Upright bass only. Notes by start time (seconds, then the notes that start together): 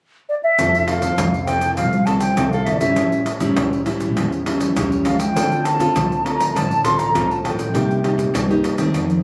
0.59 F1
1.03 F2
1.18 F1
1.78 C2
2.38 C2
2.68 G1
2.98 A1
3.41 A2
3.57 A1
4.17 E2
4.77 E2
5.06 C#2
5.36 D2
5.79 D3
5.96 D2
6.55 A1
7.15 A1
7.45 A1
7.74 C2
8.18 C3
8.34 C2
8.94 F2